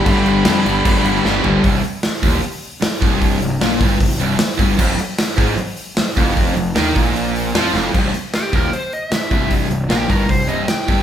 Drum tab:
CC |x-x-x-x-x-x-----|----------------|----------------|x---------------|
HH |----------------|o-o-o-o-o-o-o-o-|o-o-o-o-o-o-o-o-|--o-o-o-o-o-o-o-|
SD |----o------oo---|----o-------o---|----o-------o---|----o-------o---|
FT |--------------o-|----------------|----------------|----------------|
BD |o-------o-------|o-----o-------o-|o-----o-o-----o-|o-----o-------o-|

CC |----------------|x---------------|----------------|
HH |o-o-o-o-o-o-o---|--o-o-o-o-o-o-o-|o-o-o-o-o-o-o-o-|
SD |----o-------o-o-|----o-------o---|----o-------o---|
FT |----------------|----------------|----------------|
BD |o-----o---------|o-----o-------o-|o-----o-o-----o-|